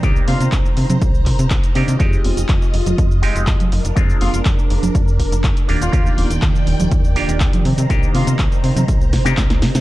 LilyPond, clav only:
\new Staff \with { instrumentName = "Clav" } { \time 4/4 \key c \minor \tempo 4 = 122 <bes d' ees' g'>2.~ <bes d' ees' g'>8 <bes d' ees' g'>8 | <aes c' ees' g'>2~ <aes c' ees' g'>8 <aes c' ees' g'>4 r8 | <aes c' d' f'>2.~ <aes c' d' f'>8 <bes d' f' g'>8 | <bes d' f' g'>2~ <bes d' f' g'>8 <bes d' f' g'>4 r8 |
<bes d' ees' g'>2~ <bes d' ees' g'>8. <bes d' ees' g'>4~ <bes d' ees' g'>16 | }